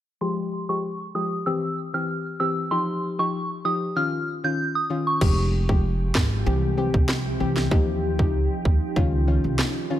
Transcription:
0.21 synth pluck F3 G#3 G4, synth bell C6
0.69 synth pluck F3 G#3 G4, synth bell C#6
1.15 synth pluck F3 G#3 G4, synth bell D#6
1.46 synth pluck E3 C4 G4, synth bell E6
1.94 synth pluck E3 C4 G4, synth bell F6
2.40 synth pluck E3 C4 G4, synth bell E6
2.71 synth pluck F3 D#4 G4, synth bell C6
3.19 synth pluck F3 D#4 G4, synth bell C#6
3.65 synth pluck F3 D#4 G4, synth bell D#6
3.96 synth pluck D#3 C#4 F4, synth bell F6
4.44 synth pluck D#3 C#4 F4, synth bell G6
4.75 synth bell D#6
4.90 synth pluck D#3 C#4 F4
5.07 synth bell C#6
5.21 upright bass F1, synth pluck F3 G#3 G4, ambient pad F3 G#3 G4, kick, crash
5.69 synth pluck F3 G#3 G4, kick
6.15 upright bass G#1, kick, cross-stick, snare
6.46 upright bass C2, synth pluck E3 C4 G4, ambient pad E3 C4
6.77 synth pluck E3 C4 G4
6.94 upright bass C2, kick
7.09 cross-stick, snare
7.40 upright bass C2, synth pluck E3 C4 G4
7.57 snare
7.71 upright bass D#2, synth pluck F3 D#4 G4, ambient pad F3 D#4 G4, kick
8.19 upright bass C#2, synth pluck F3 D#4 G4, kick
8.65 upright bass D#2, kick
8.96 upright bass C#2, synth pluck D#3 C#4 F4, ambient pad D#3 C#4 F4, kick
9.27 synth pluck D#3 C#4 F4
9.44 upright bass C2
9.59 cross-stick, snare
9.90 synth pluck D#3 C#4 F4

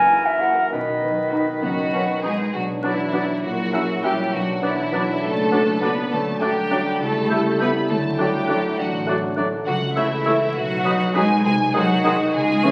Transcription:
Already playing: double bass section F#1, cello section F#2, harp F#2, bassoon E3, oboe A#4, flute G#5
0.11 french horn section A#3 E4, harp E4
0.26 flute E5
0.40 french horn section A#3 E4, viola section E4, violin section A#4 C#5, harp A#4 C#5, flute F#5
0.71 double bass section B1, cello section B2, harp B2, bassoon D#3, oboe B4, flute D#5
1.02 harp F#3, french horn section B3 D#4
1.32 french horn section B3 D#4, viola section D#4, harp D#4, violin section F#4 B4
1.62 double bass section F#1, cello section F#2 F#3, viola section B3, violin section F#4 F#5, harp D#5
1.92 french horn section B3 D#4, viola section C#4, harp B4
2.23 harp F#3, cello section G#3, french horn section B3 D#4, viola section D#4, violin section F#4 G#4 B4 G#5
2.53 double bass section B1, harp B2, cello section F#3, french horn section F#3 D4, violin section F#4 F#5
2.83 cello section E3, viola section F#3 D4, bassoon B3, harp B3, violin section E4 E5, oboe D5, flute F#6
3.12 viola section F#3 D4, bassoon B3, harp F#4 D5, oboe D5, flute F#6
3.43 double bass section A#1, harp A#2, cello section F#3, french horn section E4, violin section F#4 F#5
3.73 viola section F#3 E4, harp C#4, bassoon C#4, oboe E5, flute F#6
4.03 viola section F#3 E4, cello section G3, bassoon C#4, harp F#4 E5, violin section G4 G5, oboe E5, flute F#6
4.32 double bass section B1, harp B2, cello section F#3, french horn section D4, violin section F#4 F#5
4.62 cello section E3, viola section F#3 D4, bassoon B3, harp B3, violin section E4 E5, oboe D5, flute F#6
4.92 viola section F#3 D4, bassoon B3, harp F#4, oboe D5, flute F#6
5.22 double bass section F#1, cello section A3, violin section A4 A5, harp D5
5.52 viola section F#3 D4, bassoon B3, harp F#4, oboe D5, flute F#6
5.81 viola section F#3 D4, bassoon B3, harp B3, cello section B3, violin section B4 B5, oboe D5, flute F#6
6.11 double bass section D2, harp D3, french horn section F#3, cello section A3, violin section A4 A5
6.41 viola section F#3 D4, cello section G3, bassoon A3, harp A3, violin section G4 G5, oboe D5, flute F#6
6.71 viola section F#3 D4, bassoon A3, harp F#4 D5, oboe D5, flute F#6
6.93 violin section B5
7.00 double bass section C#2, harp C#3, french horn section G3 E4, cello section A3, violin section A4 A5
7.30 viola section G3 E4, bassoon A3, oboe E5, flute G6
7.59 viola section G3 E4, bassoon A3, cello section B3, harp G4 E5, violin section B4 B5, oboe E5, flute G6
7.88 double bass section D2, harp D3, french horn section F#3, cello section A3, violin section A4 A5
8.18 viola section F#3 D4, cello section G3, bassoon A3, harp A3, violin section G4 G5, oboe D5, flute F#6
8.48 viola section F#3 D4, bassoon A3, harp F#4, oboe D5, flute F#6
8.78 double bass section A1, cello section F#3, french horn section D4, violin section F#4 F#5, harp D5
9.07 viola section F#3 D4, bassoon A3, harp F#4, oboe D5, flute F#6
9.36 viola section F#3 D4, bassoon A3, harp A3, oboe D5, flute F#6
9.66 double bass section C#2, harp C#3, cello section F#3, violin section F#4 F#5
9.96 cello section E3, french horn section A3 E4, bassoon A3, viola section A3 E4, harp A3, violin section E4 E5, oboe C#5, flute E6
10.25 french horn section A3 E4, bassoon A3, viola section A3 E4, harp E4 E5, oboe C#5, flute E6
10.55 double bass section B1, harp B2, cello section F#3, violin section F#4 F#5
10.84 bassoon F#3, french horn section F#3 D#4, viola section F#3 D#4, harp F#3, oboe B4, flute D#6
11.14 bassoon F#3, viola section F#3 D#4, french horn section F#3 D#4, cello section G#3, harp D#4 B4, violin section G#4 G#5, oboe B4, flute D#6
11.44 double bass section C2, harp C3, cello section G#3, violin section G#4 G#5
11.74 bassoon D#3, cello section F#3, french horn section G#3 D#4, viola section G#3 D#4, harp G#3, violin section F#4 F#5, oboe G#4, flute D#6
12.04 bassoon D#3, french horn section G#3 D#4, viola section G#3 D#4, harp D#4 D#5, oboe G#4, flute D#6
12.33 double bass section C#2, harp C#3, cello section G#3, violin section G#4 G#5
12.63 bassoon E3, viola section E3 C#4, harp G#3, french horn section G#3 E4, oboe G#4, flute C#6

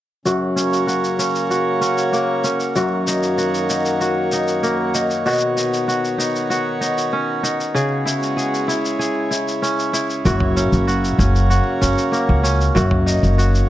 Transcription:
0.25 kora F#2 F#4, harmonium C#3, shaker
0.56 harmonium A#3, kora C#4, shaker
0.65 harmonium C#5
0.72 harmonium F#4, shaker
0.87 kora F#4, shaker
1.04 shaker
1.19 kora C#4, shaker
1.35 shaker
1.50 kora F#4, shaker
1.81 kora C#4, shaker
1.98 shaker
2.13 kora A#3, shaker
2.44 kora C#4, shaker
2.60 shaker
2.75 harmonium F#2, kora F#2 F#4, shaker
2.94 harmonium D#3
3.07 kora D#4, shaker
3.23 shaker
3.38 kora F#4, shaker
3.54 shaker
3.70 kora D#4, shaker
3.85 shaker
4.01 kora F#4, shaker
4.32 kora D#4, shaker
4.48 shaker
4.63 kora A#3, shaker
4.94 kora D#4, shaker
5.10 shaker
5.26 kora B2 F#4, shaker
5.28 shaker
5.30 shaker
5.32 shaker
5.35 shaker
5.37 shaker
5.40 shaker
5.57 kora D#4, shaker
5.63 harmonium B3
5.73 shaker
5.88 kora F#4, shaker
6.05 shaker
6.18 kora D#4, shaker
6.36 shaker
6.50 kora F#4, shaker
6.81 kora D#4, shaker
6.98 shaker
7.13 kora C#4
7.43 kora D#4, shaker
7.60 shaker
7.74 harmonium C#3, kora C#3 G#4, shaker
8.05 kora E4, shaker
8.18 harmonium G#3
8.23 shaker
8.37 kora G#4, shaker
8.54 shaker
8.68 kora E4, shaker
8.73 harmonium E4
8.85 shaker
8.99 kora G#4, shaker
9.31 kora E4, shaker
9.48 shaker
9.62 kora C#4, shaker
9.79 shaker
9.93 kora E4, shaker
10.10 shaker
10.25 upright bass F#1, kora F#2 F#4, shaker
10.40 mid tom
10.55 harmonium A#3, kora C#4, shaker
10.72 upright bass F#1, harmonium F#4, shaker
10.87 kora F#4, shaker
11.04 shaker
11.19 upright bass F#1, kora C#4, mid tom, shaker
11.35 shaker
11.50 kora F#4, shaker
11.81 upright bass F#1, kora C#4, shaker
11.98 shaker
12.12 kora A#3, shaker
12.29 upright bass C#2
12.43 kora C#4, shaker
12.61 shaker
12.75 upright bass F#1, kora F#2 F#4, harmonium D#3, shaker
12.91 mid tom
13.06 kora D#4, shaker
13.23 upright bass F#1, shaker
13.38 kora F#4, shaker
13.55 shaker

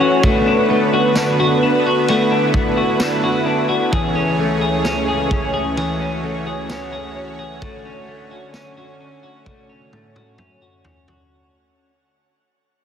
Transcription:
Already playing: analog synth pad E3 A3 C#4 F#4 C#5, clean electric guitar E3 A3 C#4
0.01 clean electric guitar F#4
0.22 analog synth pad D3 B3 B4, clean electric guitar A3 F#4, kick, ride
0.47 clean electric guitar D4
0.70 clean electric guitar A3
0.94 clean electric guitar F#4
1.15 clean electric guitar D4, snare, ride, tambourine
1.40 clean electric guitar F#4
1.63 clean electric guitar D4
1.86 clean electric guitar F#4
2.06 clean electric guitar A3 F#4, analog synth pad E4, ride
2.32 clean electric guitar D4
2.54 clean electric guitar A3, kick
2.77 clean electric guitar F#4
3.00 clean electric guitar D4, snare, ride, tambourine
3.24 clean electric guitar F#4
3.46 clean electric guitar D4
3.69 clean electric guitar F#4
3.92 analog synth pad C#2 E3 A3 C#4 G#4 C#5, clean electric guitar E3 G#4, kick, ride
4.15 clean electric guitar C#4
4.39 clean electric guitar A3
4.61 clean electric guitar G#4
4.85 clean electric guitar C#4, snare, ride, tambourine
5.08 clean electric guitar G#4
5.31 clean electric guitar C#4, kick
5.54 clean electric guitar G#4
5.76 clean electric guitar E3 G#4, analog synth pad F#4, ride
6.00 clean electric guitar C#4
6.24 clean electric guitar A3
6.47 clean electric guitar G#4
6.69 clean electric guitar C#4, snare, ride, tambourine
6.92 clean electric guitar G#4
7.16 clean electric guitar C#4
7.39 clean electric guitar G#4
7.62 analog synth pad D3 C#4, clean electric guitar A3 F#4, kick, ride
7.85 clean electric guitar C#4
8.08 clean electric guitar A3
8.31 clean electric guitar F#4
8.54 clean electric guitar C#4, snare, ride, tambourine
8.77 clean electric guitar F#4
9.00 clean electric guitar C#4
9.23 clean electric guitar F#4
9.46 clean electric guitar A3 F#4, kick, high tom
9.69 clean electric guitar C#4
9.93 clean electric guitar A3, mid tom
10.16 clean electric guitar F#4, mid tom
10.38 clean electric guitar C#4, mid tom
10.62 clean electric guitar F#4
10.84 clean electric guitar C#4, floor tom
11.08 clean electric guitar F#4, floor tom

